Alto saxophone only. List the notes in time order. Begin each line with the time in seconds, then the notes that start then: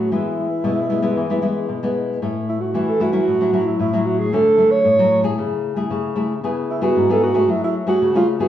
0.00 F#4
0.12 E4
2.49 E4
2.61 F#4
2.89 A4
3.01 F#4
3.66 E4
3.81 E4
4.06 F#4
4.19 G#4
4.34 A4
4.71 C#5
6.70 E4
6.83 F#4
7.12 A4
7.23 F#4
7.50 E4
7.64 E4
7.89 F#4
8.17 F4
8.42 F#4